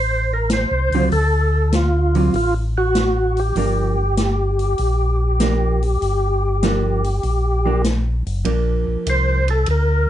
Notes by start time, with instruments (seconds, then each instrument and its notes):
Already playing: tonewheel organ A1 C5
0.33 tonewheel organ A#4
0.50 tonewheel organ C5, snare, closed hi-hat
0.71 tonewheel organ C2
0.91 tonewheel organ C#2, hollow-body jazz guitar D3 F#3, open hi-hat
0.95 hollow-body jazz guitar C4 F4
1.12 tonewheel organ D2 A4, open hi-hat
1.72 tonewheel organ F4, snare, closed hi-hat
2.15 hollow-body jazz guitar D3 F#3 C4 F4, open hi-hat
2.34 tonewheel organ A1 F4, open hi-hat
2.78 tonewheel organ F#4
2.95 snare, closed hi-hat
3.37 tonewheel organ G4, open hi-hat
3.56 tonewheel organ G1, hollow-body jazz guitar F3 A#3 D4, open hi-hat
4.17 snare, closed hi-hat
4.59 open hi-hat
4.78 tonewheel organ A#1, open hi-hat
5.40 hollow-body jazz guitar F3 A#3 D4, snare, closed hi-hat
5.82 open hi-hat
6.01 tonewheel organ G1, open hi-hat
6.63 hollow-body jazz guitar F3 A#3 D4, snare, closed hi-hat
7.04 open hi-hat
7.23 tonewheel organ A#1, open hi-hat
7.66 hollow-body jazz guitar F3 A#3 D4
7.84 snare, closed hi-hat
8.27 tonewheel organ F#1, open hi-hat
8.45 tonewheel organ A#1, hollow-body jazz guitar F3 A#3 D4, ride
8.87 tonewheel organ A#1
9.06 tonewheel organ C2 C5, hi-hat pedal, ride
9.48 tonewheel organ A4, ride
9.66 tonewheel organ D2, ride
9.71 tonewheel organ A#4